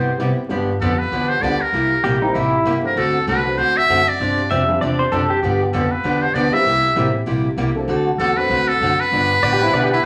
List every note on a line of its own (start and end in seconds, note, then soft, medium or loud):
0.00 0.38 G1 medium
0.00 0.38 C5 loud
0.18 0.30 C3 medium
0.18 0.35 G3 medium
0.18 0.30 G3 medium
0.18 0.36 B3 medium
0.18 0.31 B3 medium
0.18 0.36 C4 medium
0.18 0.36 E4 medium
0.18 0.31 E4 medium
0.18 0.31 G4 medium
0.49 0.80 G2 medium
0.49 0.70 D3 soft
0.49 0.70 F3 medium
0.49 0.66 G3 medium
0.49 0.67 B3 medium
0.49 0.70 B3 medium
0.49 0.67 D4 medium
0.49 0.70 D4 medium
0.49 0.67 F4 medium
0.49 0.67 G4 medium
0.49 0.70 G4 medium
0.80 1.11 F2 medium
0.80 0.92 D3 medium
0.80 0.92 F3 medium
0.80 0.92 B3 medium
0.80 0.92 D4 medium
0.80 0.92 G4 medium
0.80 1.00 A4 medium
0.98 1.30 B4 medium
1.11 1.41 E2 medium
1.11 1.32 D3 medium
1.11 1.32 F3 medium
1.11 1.32 B3 medium
1.11 1.32 D4 medium
1.11 1.32 G4 medium
1.29 1.43 C5 medium
1.41 1.72 D2 medium
1.41 1.54 D3 medium
1.41 1.54 F3 medium
1.41 1.58 G3 medium
1.41 1.59 B3 medium
1.41 1.54 B3 medium
1.41 1.59 D4 medium
1.41 1.54 D4 medium
1.41 1.59 F4 medium
1.41 1.54 G4 medium
1.41 1.59 A4 medium
1.41 1.63 D5 loud
1.61 2.23 A#4 loud
1.73 2.03 C2 medium
1.73 1.93 C3 medium
1.73 1.93 G3 medium
1.73 1.94 A#3 medium
1.73 1.94 E4 medium
1.73 1.94 G4 medium
2.03 2.34 A#1 medium
2.03 2.15 C3 medium
2.03 2.15 G3 medium
2.03 2.15 A#3 medium
2.03 2.15 E4 medium
2.03 2.22 G4 loud
2.03 2.16 G4 medium
2.21 2.33 G3 medium
2.21 2.33 A#3 medium
2.21 2.33 C4 medium
2.21 2.33 D#4 medium
2.21 2.34 E4 medium
2.21 2.34 G4 medium
2.34 2.64 A1 medium
2.34 2.55 C3 medium
2.34 2.55 G3 medium
2.34 2.55 A#3 medium
2.34 2.73 E4 medium
2.34 2.55 E4 medium
2.34 2.55 G4 medium
2.64 2.95 G1 medium
2.64 2.76 C3 medium
2.64 2.76 G3 medium
2.64 2.77 A#3 medium
2.64 2.77 E4 medium
2.64 2.77 G4 medium
2.83 2.94 F#3 medium
2.83 2.95 A3 medium
2.83 2.95 C4 medium
2.83 2.95 D4 medium
2.83 2.95 F#4 medium
2.83 2.99 A#4 medium
2.96 3.26 D2 medium
2.96 3.16 D3 medium
2.96 3.17 A3 medium
2.96 3.17 C4 medium
2.96 3.17 F#4 medium
2.96 3.17 A4 medium
2.96 3.27 A4 loud
3.27 3.57 C2 medium
3.27 3.38 D3 medium
3.27 3.38 A3 medium
3.27 3.39 C4 medium
3.27 3.39 F#4 medium
3.27 3.39 A4 medium
3.27 3.59 B4 medium
3.44 3.56 F#3 medium
3.44 3.56 A3 medium
3.44 3.56 C4 medium
3.44 3.56 D4 medium
3.44 3.56 F#4 medium
3.57 3.88 D2 medium
3.57 3.77 D3 medium
3.57 3.78 A3 medium
3.57 3.78 C4 medium
3.57 3.78 F#4 medium
3.57 3.78 A4 medium
3.57 3.78 C5 loud
3.77 4.10 E5 loud
3.89 4.19 F#2 medium
3.89 4.00 D3 medium
3.89 4.00 A3 medium
3.89 4.00 C4 medium
3.89 4.00 F#4 medium
3.89 4.00 A4 medium
4.08 4.69 D5 loud
4.20 4.49 G2 medium
4.20 4.40 C3 medium
4.20 4.40 F3 medium
4.20 4.40 C4 medium
4.20 4.40 D4 medium
4.20 4.40 G4 medium
4.50 4.80 F2 medium
4.50 4.61 C3 medium
4.50 4.61 F3 medium
4.50 4.62 C4 medium
4.50 4.61 D4 medium
4.50 4.62 G4 medium
4.50 4.80 E5 loud
4.68 4.79 F3 medium
4.68 4.80 G3 medium
4.68 4.80 C4 medium
4.68 4.80 D4 medium
4.68 4.80 F4 medium
4.81 5.11 E2 medium
4.81 5.01 C3 medium
4.81 5.01 F3 medium
4.81 5.02 C4 medium
4.81 5.02 D4 medium
4.81 5.02 G4 medium
4.81 4.99 D5 medium
4.99 5.11 C5 medium
5.12 5.42 F#2 medium
5.12 5.23 C3 medium
5.12 5.23 F3 medium
5.12 5.23 C4 medium
5.12 5.23 D4 medium
5.12 5.23 G4 medium
5.12 5.30 A4 medium
5.30 5.42 G4 medium
5.42 5.72 G2 medium
5.42 5.63 D3 medium
5.42 5.63 F3 medium
5.42 5.63 B3 medium
5.42 5.63 D4 medium
5.42 5.61 G4 medium
5.42 5.64 G4 medium
5.73 6.03 F2 medium
5.73 5.84 D3 medium
5.73 5.84 F3 medium
5.73 5.84 B3 medium
5.73 5.85 D4 medium
5.73 5.85 G4 medium
5.73 5.92 A4 medium
5.91 6.23 B4 medium
6.04 6.33 E2 medium
6.04 6.24 D3 medium
6.04 6.24 F3 medium
6.04 6.24 B3 medium
6.04 6.24 D4 medium
6.04 6.24 G4 medium
6.22 6.35 C5 medium
6.34 6.52 D2 medium
6.34 6.46 D3 medium
6.34 6.46 F3 medium
6.34 6.46 B3 medium
6.34 6.46 D4 medium
6.34 6.46 G4 medium
6.34 6.55 D5 loud
6.52 6.64 G3 medium
6.52 6.64 A#3 medium
6.52 6.64 C4 medium
6.52 6.64 E4 medium
6.52 6.65 G4 medium
6.52 7.15 E5 loud
6.65 6.95 C2 medium
6.65 6.86 C3 medium
6.65 6.86 G3 medium
6.65 6.86 A#3 medium
6.65 6.86 E4 medium
6.65 6.86 G4 medium
6.95 7.26 A1 medium
6.95 7.07 C3 medium
6.95 7.13 G3 medium
6.95 7.07 G3 medium
6.95 7.13 A#3 medium
6.95 7.07 A#3 medium
6.95 7.13 C4 medium
6.95 7.07 E4 medium
6.95 7.13 E4 medium
6.95 7.13 G4 medium
6.95 7.07 G4 medium
7.26 7.56 A#1 medium
7.26 7.46 C3 medium
7.26 7.47 G3 medium
7.26 7.47 A#3 medium
7.26 7.47 E4 medium
7.26 7.47 G4 medium
7.56 7.87 C2 medium
7.56 7.68 C3 medium
7.56 7.68 G3 medium
7.56 7.69 A#3 medium
7.56 7.69 E4 medium
7.56 7.69 G4 medium
7.75 7.86 F#3 medium
7.75 7.87 A3 medium
7.75 7.87 C4 medium
7.75 7.87 D4 medium
7.75 7.87 A4 medium
7.87 8.18 D2 medium
7.87 8.08 D3 medium
7.87 8.08 A3 medium
7.87 8.08 C4 medium
7.87 8.08 F#4 medium
7.87 8.09 A4 medium
8.18 8.48 E2 medium
8.18 8.30 D3 medium
8.18 8.30 A3 medium
8.18 8.30 C4 medium
8.18 8.30 F#4 medium
8.18 8.38 A4 loud
8.18 8.31 A4 medium
8.36 8.48 F#3 medium
8.36 8.48 A3 medium
8.36 8.48 C4 medium
8.36 8.48 D4 medium
8.36 8.49 F#4 medium
8.36 8.69 B4 loud
8.49 8.79 D2 medium
8.49 8.70 D3 medium
8.49 8.70 A3 medium
8.49 8.70 C4 medium
8.49 8.70 F#4 medium
8.49 8.70 A4 medium
8.68 9.01 A4 loud
8.80 9.10 F#2 medium
8.80 8.92 D3 medium
8.80 8.92 A3 medium
8.80 8.92 C4 medium
8.80 8.92 F#4 medium
8.80 8.92 A4 medium
9.00 9.91 B4 loud
9.11 9.41 G2 medium
9.11 9.31 D3 medium
9.11 9.32 F3 medium
9.11 9.32 B3 medium
9.11 9.32 D4 medium
9.11 9.32 G4 medium
9.42 9.72 A2 medium
9.42 9.53 D3 medium
9.42 9.53 F3 medium
9.42 9.54 B3 medium
9.42 9.54 D4 medium
9.42 9.54 G4 medium
9.42 9.52 D5 medium
9.53 9.62 G4 medium
9.60 9.71 F3 medium
9.60 9.71 G3 medium
9.60 9.72 B3 medium
9.60 9.71 D4 medium
9.60 9.73 E4 medium
9.60 9.72 F4 medium
9.72 10.02 B2 medium
9.72 9.93 D3 medium
9.72 9.93 F3 medium
9.72 9.93 B3 medium
9.72 9.93 D4 medium
9.72 9.93 G4 medium
9.72 9.83 D5 medium
9.83 9.93 G4 medium
9.92 10.03 E4 medium
9.92 10.05 B4 loud